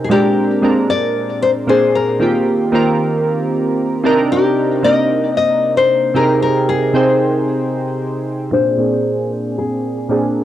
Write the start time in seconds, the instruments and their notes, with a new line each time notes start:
Already playing: synth keys C3 C4 D#4 G#4 A#4 G5
0.04 nylon-string guitar G#4
0.09 synth keys A#2 G#3 C4 D4 A#4, nylon-string guitar G4
0.62 synth keys A#2 G#3 C4 D4 A#4
0.90 nylon-string guitar D5
1.42 nylon-string guitar C5
1.67 synth keys A#2 A#3 C4 D4 G#4, nylon-string guitar C5
1.95 nylon-string guitar A#4
2.20 synth keys D#3 A#3 C4 F4 G4
2.72 synth keys D#3 A#3 C4 F4 A#4
4.04 synth keys C3 C4 D4 D#4 A#4
4.32 nylon-string guitar G4
4.83 synth keys C3 A#3 C4 D#4 A#4, nylon-string guitar D#5
5.37 nylon-string guitar D#5
5.77 nylon-string guitar C5
6.14 synth keys C3 C4 D#4 G4 G#4 A#4, nylon-string guitar A#4
6.42 nylon-string guitar A#4
6.69 nylon-string guitar G#4
6.93 synth keys C3 C4 D#4 G#4 C5 G5
8.51 synth keys A#2 A#3 C4 D4 G#4, nylon-string guitar C5
8.77 synth keys A#2 A#3 C4 D4 G#4
9.58 nylon-string guitar G#4
10.09 synth keys A#2 A#3 C4 D4 G#4